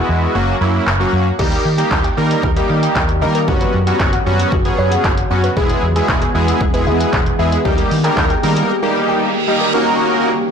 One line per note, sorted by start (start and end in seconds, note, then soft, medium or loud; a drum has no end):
0.00 0.34 G#3 medium
0.00 0.34 B3 medium
0.00 0.34 E4 medium
0.00 0.34 F#4 medium
0.09 0.26 E2 loud
0.35 0.52 F#1 loud
0.35 0.56 F#3 medium
0.35 0.56 A#3 medium
0.35 0.56 C#4 medium
0.35 0.56 F#4 loud
0.61 0.78 F#2 medium
0.61 0.89 F#3 medium
0.61 0.89 A#3 medium
0.61 0.89 C#4 medium
0.61 0.89 E4 medium
0.87 1.04 F#1 loud
0.87 clap loud
1.00 1.28 F#3 medium
1.00 1.28 A#3 medium
1.00 1.28 C#4 medium
1.00 1.28 F#4 loud
1.13 1.30 F#2 medium
1.39 1.56 D#2 loud
1.39 3.46 D#3 medium
1.39 1.67 G3 medium
1.39 3.46 G3 medium
1.39 3.46 A#3 medium
1.39 1.67 A#3 medium
1.39 1.67 D#4 medium
1.39 3.46 G4 medium
1.39 1.51 G4 loud
1.39 1.67 G4 loud
1.39 kick loud
1.39 crash medium
1.52 1.64 A#4 medium
1.52 closed hi-hat medium
1.65 1.82 D#3 loud
1.78 2.06 G3 medium
1.78 2.06 A#3 medium
1.78 2.06 D#4 medium
1.78 2.06 G4 medium
1.78 1.90 G5 medium
1.78 closed hi-hat medium
1.91 2.08 D#2 loud
1.91 2.03 G6 medium
1.91 kick loud
1.91 clap loud
2.04 2.16 G5 medium
2.04 closed hi-hat medium
2.17 2.35 D#3 medium
2.17 2.45 G3 medium
2.17 2.45 A#3 medium
2.17 2.45 D#4 medium
2.17 2.45 A#4 loud
2.31 closed hi-hat medium
2.43 2.60 D#2 loud
2.43 2.55 G4 medium
2.43 kick loud
2.56 3.03 G3 medium
2.56 3.03 A#3 medium
2.56 3.03 D#4 medium
2.56 3.03 G4 medium
2.56 2.69 A#4 medium
2.56 closed hi-hat medium
2.70 2.87 D#3 loud
2.70 2.82 D#5 medium
2.83 2.95 G5 medium
2.83 closed hi-hat medium
2.96 3.24 D#2 loud
2.96 kick loud
2.96 clap loud
3.09 closed hi-hat medium
3.21 3.50 D#3 medium
3.21 3.40 G3 medium
3.21 3.40 A#3 medium
3.21 3.40 D#4 medium
3.21 3.40 A#4 loud
3.21 3.34 D#5 medium
3.35 3.47 A#4 medium
3.35 closed hi-hat medium
3.48 3.65 F#1 loud
3.48 5.55 C#3 medium
3.48 3.75 F#3 medium
3.48 5.55 F#3 medium
3.48 3.75 B3 medium
3.48 7.62 B3 medium
3.48 3.76 C#4 medium
3.48 3.60 F#4 loud
3.48 3.76 F#4 medium
3.48 5.55 F#4 medium
3.48 kick loud
3.61 3.73 B4 medium
3.61 closed hi-hat medium
3.74 3.91 F#2 loud
3.87 4.15 F#3 medium
3.87 4.15 B3 medium
3.87 4.15 C#4 medium
3.87 4.15 F#4 medium
3.87 3.99 F#5 medium
3.87 closed hi-hat medium
4.00 4.17 F#1 loud
4.00 4.12 F#6 medium
4.00 kick loud
4.00 clap loud
4.13 4.25 F#5 medium
4.13 closed hi-hat medium
4.26 4.43 F#2 medium
4.26 4.54 F#3 medium
4.26 4.54 B3 medium
4.26 4.54 C#4 medium
4.26 4.54 F#4 loud
4.40 closed hi-hat medium
4.52 4.69 F#1 loud
4.52 4.64 F#4 medium
4.52 kick loud
4.65 5.11 F#3 medium
4.65 5.11 B3 medium
4.65 5.12 C#4 medium
4.65 5.12 G#4 medium
4.65 4.77 B4 medium
4.65 closed hi-hat medium
4.78 4.95 F#2 loud
4.78 4.90 C#5 medium
4.92 5.03 F#5 medium
4.92 closed hi-hat medium
5.04 5.21 F#1 loud
5.04 kick loud
5.04 clap loud
5.17 closed hi-hat medium
5.31 5.48 F#2 loud
5.31 5.49 F#3 medium
5.31 5.49 B3 medium
5.31 5.49 C#4 medium
5.31 5.49 F#4 loud
5.31 5.43 C#5 medium
5.44 5.56 B4 medium
5.44 closed hi-hat medium
5.57 5.74 E1 loud
5.57 7.63 E3 medium
5.57 5.84 G#3 medium
5.57 7.63 G#3 medium
5.57 5.84 B3 medium
5.57 5.84 E4 medium
5.57 5.69 G#4 loud
5.57 7.63 G#4 medium
5.57 5.84 G#4 loud
5.57 kick loud
5.69 5.82 B4 medium
5.69 closed hi-hat medium
5.83 6.00 E2 loud
5.96 6.23 G#3 medium
5.96 6.23 B3 medium
5.96 6.24 E4 medium
5.96 6.24 G#4 medium
5.96 6.08 G#5 medium
5.96 closed hi-hat medium
6.09 6.26 E1 medium
6.09 6.21 G#6 medium
6.09 kick loud
6.09 clap loud
6.22 6.34 G#5 medium
6.22 closed hi-hat medium
6.35 6.52 E2 medium
6.35 6.62 G#3 medium
6.35 6.62 B3 medium
6.35 6.63 E4 medium
6.35 6.63 G#4 loud
6.48 closed hi-hat medium
6.61 6.88 E1 loud
6.61 6.73 G#4 medium
6.61 kick loud
6.74 7.20 G#3 medium
6.74 7.20 B3 medium
6.74 7.20 E4 medium
6.74 7.20 G#4 medium
6.74 6.86 B4 medium
6.74 closed hi-hat medium
6.87 7.04 E2 loud
6.87 6.99 E5 medium
7.00 7.12 G#5 medium
7.00 closed hi-hat medium
7.13 7.30 E1 loud
7.13 kick loud
7.13 clap loud
7.26 closed hi-hat medium
7.39 7.56 E2 loud
7.39 7.57 G#3 medium
7.39 7.58 B3 medium
7.39 7.58 E4 medium
7.39 7.58 G#4 medium
7.39 7.51 E5 medium
7.52 7.64 B4 medium
7.52 closed hi-hat medium
7.65 7.82 D#2 loud
7.65 9.72 D#3 medium
7.65 7.93 G3 medium
7.65 9.72 G3 medium
7.65 7.93 A#3 medium
7.65 9.72 A#3 medium
7.65 7.93 D#4 medium
7.65 7.77 G4 loud
7.65 7.93 G4 loud
7.65 9.72 G4 medium
7.65 kick loud
7.78 7.90 A#4 medium
7.78 closed hi-hat medium
7.91 8.08 D#3 loud
7.91 open hi-hat medium
8.04 8.32 G3 medium
8.04 8.32 A#3 medium
8.04 8.32 D#4 medium
8.04 8.32 A#4 medium
8.04 8.16 G5 medium
8.04 clap medium
8.04 closed hi-hat medium
8.17 8.34 D#2 medium
8.17 8.29 G6 medium
8.17 kick loud
8.17 clap loud
8.30 8.42 G5 medium
8.30 closed hi-hat medium
8.43 8.61 D#3 loud
8.43 8.71 G3 medium
8.43 8.71 A#3 medium
8.43 8.71 D#4 medium
8.43 8.71 A#4 loud
8.43 open hi-hat medium
8.57 closed hi-hat medium
8.70 8.82 G4 medium
8.70 reverse cymbal medium
8.82 9.29 G3 medium
8.82 9.29 A#3 medium
8.82 9.29 D#4 medium
8.82 9.29 G4 loud
8.82 8.95 A#4 medium
8.96 9.08 D#5 medium
9.09 9.21 G5 medium
9.48 9.66 G3 medium
9.48 9.66 A#3 medium
9.48 9.66 D#4 medium
9.48 9.67 G4 loud
9.48 9.60 D#5 medium
9.61 9.73 A#4 medium
9.74 10.51 C#3 medium
9.74 10.29 A#3 medium
9.74 10.51 A#3 medium
9.74 10.29 C#4 medium
9.74 10.51 C#4 medium
9.74 10.29 D#4 medium
9.74 10.51 F#4 medium
9.74 10.29 F#4 medium
9.74 10.29 A#4 loud
9.74 downlifter medium